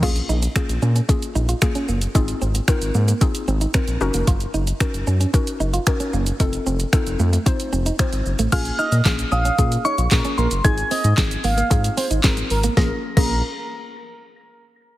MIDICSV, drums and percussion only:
0, 0, Header, 1, 2, 480
1, 0, Start_track
1, 0, Key_signature, -5, "minor"
1, 0, Tempo, 530973
1, 24, Time_signature, 4, 2, 24, 8
1, 13537, End_track
2, 0, Start_track
2, 0, Title_t, "Drums"
2, 25, Note_on_c, 9, 36, 101
2, 25, Note_on_c, 9, 49, 75
2, 115, Note_off_c, 9, 36, 0
2, 116, Note_off_c, 9, 49, 0
2, 143, Note_on_c, 9, 42, 42
2, 143, Note_on_c, 9, 82, 39
2, 234, Note_off_c, 9, 42, 0
2, 234, Note_off_c, 9, 82, 0
2, 265, Note_on_c, 9, 82, 53
2, 355, Note_off_c, 9, 82, 0
2, 384, Note_on_c, 9, 42, 53
2, 384, Note_on_c, 9, 82, 73
2, 475, Note_off_c, 9, 42, 0
2, 475, Note_off_c, 9, 82, 0
2, 503, Note_on_c, 9, 26, 115
2, 504, Note_on_c, 9, 36, 109
2, 506, Note_on_c, 9, 42, 82
2, 506, Note_on_c, 9, 82, 77
2, 593, Note_off_c, 9, 26, 0
2, 595, Note_off_c, 9, 36, 0
2, 596, Note_off_c, 9, 42, 0
2, 596, Note_off_c, 9, 82, 0
2, 627, Note_on_c, 9, 42, 56
2, 627, Note_on_c, 9, 82, 56
2, 718, Note_off_c, 9, 42, 0
2, 718, Note_off_c, 9, 82, 0
2, 743, Note_on_c, 9, 82, 52
2, 833, Note_off_c, 9, 82, 0
2, 866, Note_on_c, 9, 42, 49
2, 866, Note_on_c, 9, 82, 68
2, 956, Note_off_c, 9, 42, 0
2, 956, Note_off_c, 9, 82, 0
2, 986, Note_on_c, 9, 36, 115
2, 986, Note_on_c, 9, 42, 74
2, 986, Note_on_c, 9, 82, 71
2, 1076, Note_off_c, 9, 36, 0
2, 1077, Note_off_c, 9, 42, 0
2, 1077, Note_off_c, 9, 82, 0
2, 1107, Note_on_c, 9, 42, 58
2, 1107, Note_on_c, 9, 82, 59
2, 1197, Note_off_c, 9, 42, 0
2, 1197, Note_off_c, 9, 82, 0
2, 1225, Note_on_c, 9, 82, 55
2, 1315, Note_off_c, 9, 82, 0
2, 1345, Note_on_c, 9, 42, 47
2, 1345, Note_on_c, 9, 82, 64
2, 1435, Note_off_c, 9, 42, 0
2, 1435, Note_off_c, 9, 82, 0
2, 1462, Note_on_c, 9, 42, 79
2, 1462, Note_on_c, 9, 82, 82
2, 1463, Note_on_c, 9, 26, 119
2, 1466, Note_on_c, 9, 36, 118
2, 1553, Note_off_c, 9, 26, 0
2, 1553, Note_off_c, 9, 42, 0
2, 1553, Note_off_c, 9, 82, 0
2, 1557, Note_off_c, 9, 36, 0
2, 1583, Note_on_c, 9, 42, 52
2, 1583, Note_on_c, 9, 82, 52
2, 1674, Note_off_c, 9, 42, 0
2, 1674, Note_off_c, 9, 82, 0
2, 1704, Note_on_c, 9, 82, 48
2, 1794, Note_off_c, 9, 82, 0
2, 1822, Note_on_c, 9, 42, 59
2, 1822, Note_on_c, 9, 82, 81
2, 1912, Note_off_c, 9, 42, 0
2, 1912, Note_off_c, 9, 82, 0
2, 1944, Note_on_c, 9, 36, 105
2, 1944, Note_on_c, 9, 42, 71
2, 1944, Note_on_c, 9, 82, 76
2, 2034, Note_off_c, 9, 36, 0
2, 2034, Note_off_c, 9, 42, 0
2, 2034, Note_off_c, 9, 82, 0
2, 2062, Note_on_c, 9, 42, 40
2, 2062, Note_on_c, 9, 82, 40
2, 2152, Note_off_c, 9, 42, 0
2, 2152, Note_off_c, 9, 82, 0
2, 2184, Note_on_c, 9, 82, 53
2, 2275, Note_off_c, 9, 82, 0
2, 2304, Note_on_c, 9, 42, 55
2, 2304, Note_on_c, 9, 82, 78
2, 2394, Note_off_c, 9, 42, 0
2, 2394, Note_off_c, 9, 82, 0
2, 2422, Note_on_c, 9, 26, 121
2, 2424, Note_on_c, 9, 36, 115
2, 2425, Note_on_c, 9, 42, 82
2, 2425, Note_on_c, 9, 82, 82
2, 2512, Note_off_c, 9, 26, 0
2, 2514, Note_off_c, 9, 36, 0
2, 2515, Note_off_c, 9, 42, 0
2, 2515, Note_off_c, 9, 82, 0
2, 2546, Note_on_c, 9, 42, 54
2, 2546, Note_on_c, 9, 82, 57
2, 2636, Note_off_c, 9, 42, 0
2, 2636, Note_off_c, 9, 82, 0
2, 2662, Note_on_c, 9, 82, 48
2, 2752, Note_off_c, 9, 82, 0
2, 2786, Note_on_c, 9, 42, 50
2, 2786, Note_on_c, 9, 82, 68
2, 2876, Note_off_c, 9, 42, 0
2, 2876, Note_off_c, 9, 82, 0
2, 2904, Note_on_c, 9, 42, 77
2, 2904, Note_on_c, 9, 82, 72
2, 2905, Note_on_c, 9, 36, 115
2, 2995, Note_off_c, 9, 36, 0
2, 2995, Note_off_c, 9, 42, 0
2, 2995, Note_off_c, 9, 82, 0
2, 3026, Note_on_c, 9, 42, 59
2, 3026, Note_on_c, 9, 82, 57
2, 3116, Note_off_c, 9, 42, 0
2, 3116, Note_off_c, 9, 82, 0
2, 3144, Note_on_c, 9, 82, 53
2, 3235, Note_off_c, 9, 82, 0
2, 3265, Note_on_c, 9, 42, 48
2, 3265, Note_on_c, 9, 82, 64
2, 3355, Note_off_c, 9, 42, 0
2, 3355, Note_off_c, 9, 82, 0
2, 3381, Note_on_c, 9, 42, 80
2, 3381, Note_on_c, 9, 82, 79
2, 3382, Note_on_c, 9, 26, 117
2, 3386, Note_on_c, 9, 36, 118
2, 3472, Note_off_c, 9, 42, 0
2, 3472, Note_off_c, 9, 82, 0
2, 3473, Note_off_c, 9, 26, 0
2, 3476, Note_off_c, 9, 36, 0
2, 3503, Note_on_c, 9, 42, 54
2, 3503, Note_on_c, 9, 82, 52
2, 3593, Note_off_c, 9, 42, 0
2, 3593, Note_off_c, 9, 82, 0
2, 3623, Note_on_c, 9, 82, 47
2, 3714, Note_off_c, 9, 82, 0
2, 3741, Note_on_c, 9, 42, 58
2, 3741, Note_on_c, 9, 82, 80
2, 3832, Note_off_c, 9, 42, 0
2, 3832, Note_off_c, 9, 82, 0
2, 3864, Note_on_c, 9, 36, 102
2, 3864, Note_on_c, 9, 42, 74
2, 3864, Note_on_c, 9, 82, 73
2, 3954, Note_off_c, 9, 42, 0
2, 3954, Note_off_c, 9, 82, 0
2, 3955, Note_off_c, 9, 36, 0
2, 3981, Note_on_c, 9, 42, 41
2, 3981, Note_on_c, 9, 82, 43
2, 4072, Note_off_c, 9, 42, 0
2, 4072, Note_off_c, 9, 82, 0
2, 4104, Note_on_c, 9, 82, 54
2, 4195, Note_off_c, 9, 82, 0
2, 4223, Note_on_c, 9, 42, 56
2, 4223, Note_on_c, 9, 82, 73
2, 4314, Note_off_c, 9, 42, 0
2, 4314, Note_off_c, 9, 82, 0
2, 4343, Note_on_c, 9, 26, 114
2, 4345, Note_on_c, 9, 36, 119
2, 4346, Note_on_c, 9, 42, 85
2, 4346, Note_on_c, 9, 82, 85
2, 4433, Note_off_c, 9, 26, 0
2, 4435, Note_off_c, 9, 36, 0
2, 4436, Note_off_c, 9, 42, 0
2, 4436, Note_off_c, 9, 82, 0
2, 4467, Note_on_c, 9, 42, 58
2, 4467, Note_on_c, 9, 82, 55
2, 4558, Note_off_c, 9, 42, 0
2, 4558, Note_off_c, 9, 82, 0
2, 4583, Note_on_c, 9, 82, 50
2, 4673, Note_off_c, 9, 82, 0
2, 4707, Note_on_c, 9, 42, 50
2, 4707, Note_on_c, 9, 82, 69
2, 4798, Note_off_c, 9, 42, 0
2, 4798, Note_off_c, 9, 82, 0
2, 4826, Note_on_c, 9, 36, 110
2, 4826, Note_on_c, 9, 42, 72
2, 4826, Note_on_c, 9, 82, 75
2, 4916, Note_off_c, 9, 36, 0
2, 4916, Note_off_c, 9, 42, 0
2, 4916, Note_off_c, 9, 82, 0
2, 4947, Note_on_c, 9, 42, 56
2, 4947, Note_on_c, 9, 82, 57
2, 5037, Note_off_c, 9, 42, 0
2, 5037, Note_off_c, 9, 82, 0
2, 5066, Note_on_c, 9, 82, 53
2, 5156, Note_off_c, 9, 82, 0
2, 5186, Note_on_c, 9, 42, 48
2, 5186, Note_on_c, 9, 82, 64
2, 5276, Note_off_c, 9, 42, 0
2, 5276, Note_off_c, 9, 82, 0
2, 5303, Note_on_c, 9, 42, 80
2, 5303, Note_on_c, 9, 82, 80
2, 5304, Note_on_c, 9, 26, 115
2, 5307, Note_on_c, 9, 36, 113
2, 5394, Note_off_c, 9, 42, 0
2, 5394, Note_off_c, 9, 82, 0
2, 5395, Note_off_c, 9, 26, 0
2, 5397, Note_off_c, 9, 36, 0
2, 5424, Note_on_c, 9, 42, 54
2, 5424, Note_on_c, 9, 82, 54
2, 5515, Note_off_c, 9, 42, 0
2, 5515, Note_off_c, 9, 82, 0
2, 5545, Note_on_c, 9, 82, 48
2, 5635, Note_off_c, 9, 82, 0
2, 5663, Note_on_c, 9, 42, 61
2, 5663, Note_on_c, 9, 82, 82
2, 5753, Note_off_c, 9, 42, 0
2, 5753, Note_off_c, 9, 82, 0
2, 5785, Note_on_c, 9, 36, 102
2, 5786, Note_on_c, 9, 42, 75
2, 5786, Note_on_c, 9, 82, 74
2, 5876, Note_off_c, 9, 36, 0
2, 5876, Note_off_c, 9, 42, 0
2, 5876, Note_off_c, 9, 82, 0
2, 5902, Note_on_c, 9, 42, 43
2, 5902, Note_on_c, 9, 82, 41
2, 5993, Note_off_c, 9, 42, 0
2, 5993, Note_off_c, 9, 82, 0
2, 6025, Note_on_c, 9, 82, 55
2, 6115, Note_off_c, 9, 82, 0
2, 6144, Note_on_c, 9, 42, 55
2, 6144, Note_on_c, 9, 82, 74
2, 6235, Note_off_c, 9, 42, 0
2, 6235, Note_off_c, 9, 82, 0
2, 6263, Note_on_c, 9, 26, 118
2, 6265, Note_on_c, 9, 36, 113
2, 6266, Note_on_c, 9, 42, 83
2, 6266, Note_on_c, 9, 82, 77
2, 6353, Note_off_c, 9, 26, 0
2, 6355, Note_off_c, 9, 36, 0
2, 6356, Note_off_c, 9, 42, 0
2, 6356, Note_off_c, 9, 82, 0
2, 6387, Note_on_c, 9, 42, 55
2, 6387, Note_on_c, 9, 82, 58
2, 6478, Note_off_c, 9, 42, 0
2, 6478, Note_off_c, 9, 82, 0
2, 6503, Note_on_c, 9, 82, 50
2, 6594, Note_off_c, 9, 82, 0
2, 6628, Note_on_c, 9, 42, 49
2, 6628, Note_on_c, 9, 82, 67
2, 6718, Note_off_c, 9, 42, 0
2, 6718, Note_off_c, 9, 82, 0
2, 6747, Note_on_c, 9, 36, 114
2, 6747, Note_on_c, 9, 42, 76
2, 6747, Note_on_c, 9, 82, 71
2, 6837, Note_off_c, 9, 36, 0
2, 6837, Note_off_c, 9, 42, 0
2, 6837, Note_off_c, 9, 82, 0
2, 6868, Note_on_c, 9, 42, 57
2, 6868, Note_on_c, 9, 82, 55
2, 6958, Note_off_c, 9, 42, 0
2, 6958, Note_off_c, 9, 82, 0
2, 6987, Note_on_c, 9, 82, 55
2, 7077, Note_off_c, 9, 82, 0
2, 7106, Note_on_c, 9, 42, 46
2, 7106, Note_on_c, 9, 82, 65
2, 7197, Note_off_c, 9, 42, 0
2, 7197, Note_off_c, 9, 82, 0
2, 7224, Note_on_c, 9, 42, 78
2, 7224, Note_on_c, 9, 82, 82
2, 7225, Note_on_c, 9, 26, 118
2, 7227, Note_on_c, 9, 36, 115
2, 7315, Note_off_c, 9, 42, 0
2, 7315, Note_off_c, 9, 82, 0
2, 7316, Note_off_c, 9, 26, 0
2, 7318, Note_off_c, 9, 36, 0
2, 7346, Note_on_c, 9, 42, 54
2, 7346, Note_on_c, 9, 82, 53
2, 7436, Note_off_c, 9, 42, 0
2, 7436, Note_off_c, 9, 82, 0
2, 7465, Note_on_c, 9, 82, 49
2, 7556, Note_off_c, 9, 82, 0
2, 7583, Note_on_c, 9, 42, 60
2, 7583, Note_on_c, 9, 82, 80
2, 7674, Note_off_c, 9, 42, 0
2, 7674, Note_off_c, 9, 82, 0
2, 7705, Note_on_c, 9, 36, 104
2, 7705, Note_on_c, 9, 42, 74
2, 7705, Note_on_c, 9, 49, 90
2, 7705, Note_on_c, 9, 82, 76
2, 7795, Note_off_c, 9, 36, 0
2, 7795, Note_off_c, 9, 42, 0
2, 7795, Note_off_c, 9, 49, 0
2, 7795, Note_off_c, 9, 82, 0
2, 7822, Note_on_c, 9, 42, 43
2, 7822, Note_on_c, 9, 82, 44
2, 7913, Note_off_c, 9, 42, 0
2, 7913, Note_off_c, 9, 82, 0
2, 7946, Note_on_c, 9, 82, 56
2, 8036, Note_off_c, 9, 82, 0
2, 8065, Note_on_c, 9, 42, 54
2, 8065, Note_on_c, 9, 82, 74
2, 8155, Note_off_c, 9, 42, 0
2, 8155, Note_off_c, 9, 82, 0
2, 8183, Note_on_c, 9, 39, 118
2, 8185, Note_on_c, 9, 36, 111
2, 8186, Note_on_c, 9, 42, 82
2, 8186, Note_on_c, 9, 82, 79
2, 8187, Note_on_c, 9, 38, 91
2, 8274, Note_off_c, 9, 39, 0
2, 8275, Note_off_c, 9, 36, 0
2, 8277, Note_off_c, 9, 42, 0
2, 8277, Note_off_c, 9, 82, 0
2, 8278, Note_off_c, 9, 38, 0
2, 8307, Note_on_c, 9, 42, 57
2, 8307, Note_on_c, 9, 82, 58
2, 8397, Note_off_c, 9, 42, 0
2, 8397, Note_off_c, 9, 82, 0
2, 8423, Note_on_c, 9, 82, 51
2, 8513, Note_off_c, 9, 82, 0
2, 8546, Note_on_c, 9, 42, 49
2, 8546, Note_on_c, 9, 82, 70
2, 8636, Note_off_c, 9, 42, 0
2, 8636, Note_off_c, 9, 82, 0
2, 8665, Note_on_c, 9, 36, 113
2, 8665, Note_on_c, 9, 42, 72
2, 8665, Note_on_c, 9, 82, 76
2, 8755, Note_off_c, 9, 36, 0
2, 8755, Note_off_c, 9, 42, 0
2, 8755, Note_off_c, 9, 82, 0
2, 8785, Note_on_c, 9, 42, 56
2, 8785, Note_on_c, 9, 82, 57
2, 8876, Note_off_c, 9, 42, 0
2, 8876, Note_off_c, 9, 82, 0
2, 8903, Note_on_c, 9, 82, 57
2, 8994, Note_off_c, 9, 82, 0
2, 9024, Note_on_c, 9, 42, 45
2, 9024, Note_on_c, 9, 82, 65
2, 9115, Note_off_c, 9, 42, 0
2, 9115, Note_off_c, 9, 82, 0
2, 9141, Note_on_c, 9, 42, 78
2, 9141, Note_on_c, 9, 82, 81
2, 9142, Note_on_c, 9, 39, 119
2, 9146, Note_on_c, 9, 36, 122
2, 9146, Note_on_c, 9, 38, 94
2, 9232, Note_off_c, 9, 39, 0
2, 9232, Note_off_c, 9, 42, 0
2, 9232, Note_off_c, 9, 82, 0
2, 9236, Note_off_c, 9, 36, 0
2, 9236, Note_off_c, 9, 38, 0
2, 9262, Note_on_c, 9, 42, 53
2, 9262, Note_on_c, 9, 82, 53
2, 9353, Note_off_c, 9, 42, 0
2, 9353, Note_off_c, 9, 82, 0
2, 9383, Note_on_c, 9, 82, 49
2, 9474, Note_off_c, 9, 82, 0
2, 9502, Note_on_c, 9, 42, 61
2, 9502, Note_on_c, 9, 82, 79
2, 9592, Note_off_c, 9, 42, 0
2, 9592, Note_off_c, 9, 82, 0
2, 9623, Note_on_c, 9, 36, 104
2, 9623, Note_on_c, 9, 42, 76
2, 9623, Note_on_c, 9, 82, 78
2, 9714, Note_off_c, 9, 36, 0
2, 9714, Note_off_c, 9, 42, 0
2, 9714, Note_off_c, 9, 82, 0
2, 9742, Note_on_c, 9, 42, 43
2, 9742, Note_on_c, 9, 82, 42
2, 9832, Note_off_c, 9, 42, 0
2, 9832, Note_off_c, 9, 82, 0
2, 9864, Note_on_c, 9, 46, 75
2, 9864, Note_on_c, 9, 82, 54
2, 9955, Note_off_c, 9, 46, 0
2, 9955, Note_off_c, 9, 82, 0
2, 9983, Note_on_c, 9, 42, 54
2, 9983, Note_on_c, 9, 82, 77
2, 10073, Note_off_c, 9, 42, 0
2, 10073, Note_off_c, 9, 82, 0
2, 10102, Note_on_c, 9, 39, 118
2, 10104, Note_on_c, 9, 36, 122
2, 10105, Note_on_c, 9, 42, 84
2, 10105, Note_on_c, 9, 82, 83
2, 10106, Note_on_c, 9, 38, 93
2, 10193, Note_off_c, 9, 39, 0
2, 10194, Note_off_c, 9, 36, 0
2, 10195, Note_off_c, 9, 42, 0
2, 10195, Note_off_c, 9, 82, 0
2, 10196, Note_off_c, 9, 38, 0
2, 10226, Note_on_c, 9, 42, 60
2, 10226, Note_on_c, 9, 82, 57
2, 10317, Note_off_c, 9, 42, 0
2, 10317, Note_off_c, 9, 82, 0
2, 10341, Note_on_c, 9, 46, 72
2, 10341, Note_on_c, 9, 82, 49
2, 10432, Note_off_c, 9, 46, 0
2, 10432, Note_off_c, 9, 82, 0
2, 10466, Note_on_c, 9, 42, 51
2, 10466, Note_on_c, 9, 82, 72
2, 10556, Note_off_c, 9, 42, 0
2, 10556, Note_off_c, 9, 82, 0
2, 10585, Note_on_c, 9, 36, 114
2, 10586, Note_on_c, 9, 42, 76
2, 10586, Note_on_c, 9, 82, 73
2, 10676, Note_off_c, 9, 36, 0
2, 10676, Note_off_c, 9, 42, 0
2, 10676, Note_off_c, 9, 82, 0
2, 10707, Note_on_c, 9, 42, 59
2, 10707, Note_on_c, 9, 82, 57
2, 10797, Note_off_c, 9, 42, 0
2, 10797, Note_off_c, 9, 82, 0
2, 10826, Note_on_c, 9, 46, 80
2, 10826, Note_on_c, 9, 82, 57
2, 10916, Note_off_c, 9, 46, 0
2, 10916, Note_off_c, 9, 82, 0
2, 10945, Note_on_c, 9, 42, 49
2, 10945, Note_on_c, 9, 82, 64
2, 11036, Note_off_c, 9, 42, 0
2, 11036, Note_off_c, 9, 82, 0
2, 11062, Note_on_c, 9, 42, 80
2, 11062, Note_on_c, 9, 82, 80
2, 11063, Note_on_c, 9, 39, 116
2, 11066, Note_on_c, 9, 36, 124
2, 11067, Note_on_c, 9, 38, 96
2, 11152, Note_off_c, 9, 42, 0
2, 11152, Note_off_c, 9, 82, 0
2, 11153, Note_off_c, 9, 39, 0
2, 11157, Note_off_c, 9, 36, 0
2, 11157, Note_off_c, 9, 38, 0
2, 11183, Note_on_c, 9, 42, 55
2, 11183, Note_on_c, 9, 82, 55
2, 11273, Note_off_c, 9, 42, 0
2, 11273, Note_off_c, 9, 82, 0
2, 11303, Note_on_c, 9, 46, 69
2, 11303, Note_on_c, 9, 82, 49
2, 11394, Note_off_c, 9, 46, 0
2, 11394, Note_off_c, 9, 82, 0
2, 11422, Note_on_c, 9, 42, 61
2, 11422, Note_on_c, 9, 82, 81
2, 11512, Note_off_c, 9, 42, 0
2, 11512, Note_off_c, 9, 82, 0
2, 11544, Note_on_c, 9, 38, 82
2, 11545, Note_on_c, 9, 36, 99
2, 11635, Note_off_c, 9, 36, 0
2, 11635, Note_off_c, 9, 38, 0
2, 11905, Note_on_c, 9, 36, 106
2, 11905, Note_on_c, 9, 49, 85
2, 11995, Note_off_c, 9, 36, 0
2, 11995, Note_off_c, 9, 49, 0
2, 13537, End_track
0, 0, End_of_file